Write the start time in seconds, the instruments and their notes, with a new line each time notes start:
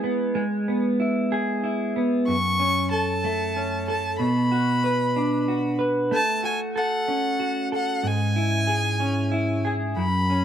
Already playing: clean electric guitar G#3 E4 G#4
0.04 clean electric guitar B3
0.35 clean electric guitar G#3
0.68 clean electric guitar B3
1.00 clean electric guitar E4
1.32 clean electric guitar G#4
1.64 clean electric guitar E4
1.96 clean electric guitar B3
2.28 clean electric guitar F#2, violin C#6
2.59 clean electric guitar C#4
2.91 clean electric guitar A4, violin A5
3.24 clean electric guitar A3
3.56 clean electric guitar C#4
3.88 clean electric guitar A4, violin A5
4.19 clean electric guitar B2, violin B5
4.52 clean electric guitar F#4
4.84 clean electric guitar B4
5.16 clean electric guitar D4
5.48 clean electric guitar F#4
5.79 clean electric guitar B4
6.11 clean electric guitar A3, violin A5
6.43 clean electric guitar F#4, violin G#5
6.76 clean electric guitar A4, violin F#5
7.08 clean electric guitar C#4
7.40 clean electric guitar F#4
7.72 clean electric guitar A4, violin F#5
8.03 clean electric guitar G#2, violin G#5
8.36 clean electric guitar E4
8.67 clean electric guitar G#4
9.00 clean electric guitar C#4
9.32 clean electric guitar E4
9.65 clean electric guitar G#4
9.97 clean electric guitar F#2, violin B5
10.30 clean electric guitar C#4